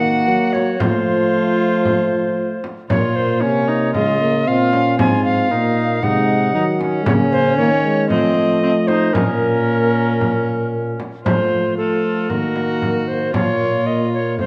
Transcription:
Already playing: D#3 A#3 F#4 F#5
0.28 F#3
0.53 C#5, frame drum
0.79 F3 A3 F4 C5, frame drum
1.85 frame drum
2.64 frame drum
2.89 A#2 A#3 F4 C#5, frame drum
3.15 C5
3.41 C3 C#4 C#5
3.68 D#4
3.94 C#3 G#3 F4 D#5, frame drum
4.21 A#3
4.46 A#2 C4 F4 F5
4.73 C#4, frame drum
4.99 G#2 C4 F4 G#5, frame drum
5.24 F5
5.52 A#2 A#3 D#4
6.02 C3 G#3 D#4 F#5, frame drum
6.54 D#3 F#3 D#4
6.80 C#4, frame drum
7.06 C#3 A#3 C#5, frame drum
7.32 C5
7.57 D#3 A#3 C#5
7.84 G#3
8.09 F3 A3 C4 D#5, frame drum
8.35 A3
8.63 C4
8.87 D#4 C5, frame drum
9.13 A#2 A#3 C#4 A#4, frame drum
10.21 frame drum
11.00 frame drum
11.25 F3 A3 F4 C5, frame drum
11.77 A3 F4 A4
12.30 D#3 A#3 F#4 A#4, frame drum
12.56 frame drum
12.82 frame drum
13.07 C5
13.34 A#2 A#3 F4 C#5, frame drum
13.86 D#5
14.14 C#5
14.38 F2 A3 F4 C5, frame drum

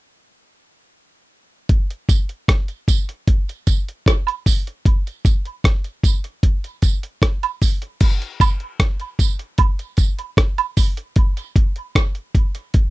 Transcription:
1.69 kick, closed hi-hat
1.91 closed hi-hat
2.09 kick, closed hi-hat, tambourine
2.29 closed hi-hat
2.48 kick, cross-stick, closed hi-hat
2.68 closed hi-hat
2.88 kick, closed hi-hat, tambourine
3.09 closed hi-hat
3.27 kick, closed hi-hat
3.49 closed hi-hat
3.67 kick, closed hi-hat, tambourine
3.88 closed hi-hat
4.06 kick, cross-stick, closed hi-hat
4.27 closed hi-hat, high woodblock
4.46 kick, open hi-hat, tambourine
4.67 closed hi-hat
4.85 kick, closed hi-hat
5.07 closed hi-hat
5.25 kick, closed hi-hat, tambourine
5.46 closed hi-hat
5.64 kick, cross-stick, closed hi-hat
5.84 closed hi-hat
6.03 kick, closed hi-hat, tambourine
6.24 closed hi-hat
6.43 kick, closed hi-hat
6.64 closed hi-hat
6.82 kick, closed hi-hat, tambourine
7.03 closed hi-hat
7.22 kick, cross-stick, closed hi-hat
7.43 closed hi-hat, high woodblock
7.62 kick, open hi-hat, tambourine
7.82 closed hi-hat
8.01 kick, closed hi-hat, crash
8.22 closed hi-hat
8.40 kick, closed hi-hat, tambourine, high woodblock
8.60 closed hi-hat
8.80 kick, cross-stick, closed hi-hat
9.00 closed hi-hat
9.19 kick, closed hi-hat, tambourine
9.39 closed hi-hat
9.58 kick, closed hi-hat, high woodblock
9.79 closed hi-hat
9.97 kick, closed hi-hat, tambourine
10.19 closed hi-hat
10.37 kick, cross-stick, closed hi-hat
10.58 closed hi-hat, high woodblock
10.77 kick, open hi-hat, tambourine
10.97 closed hi-hat
11.16 kick, closed hi-hat
11.37 closed hi-hat
11.56 kick, closed hi-hat
11.76 closed hi-hat
11.95 kick, cross-stick, closed hi-hat
12.15 closed hi-hat
12.35 kick, closed hi-hat
12.55 closed hi-hat
12.74 kick, closed hi-hat

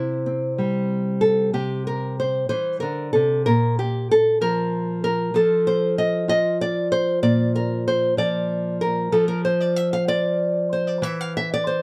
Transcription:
Already playing: C3 E4 C5
0.26 C4
0.58 G3
1.21 A4
1.53 C3 G4
1.87 A#4
2.20 C5
2.49 E3 C5
2.80 D3 A#4
3.13 C3 A4
3.46 A#2 A#4
3.79 G4
4.11 A4
4.41 F3 A#4
5.04 A#4
5.34 F3 F4 A4
5.67 C5
5.98 D#5
6.28 F4 D#5
6.61 D5
6.92 C5
7.23 A#2 D5
7.55 A#4
7.88 C5
8.17 F3 D5
8.81 A#4
9.12 F3 A4
9.28 A#4
9.45 C5
9.60 D5
9.76 E5
9.93 F5
10.08 F4 D5
10.73 C5
10.87 D5
11.02 E3 E5
11.21 F5
11.37 E5
11.54 D5
11.67 C5

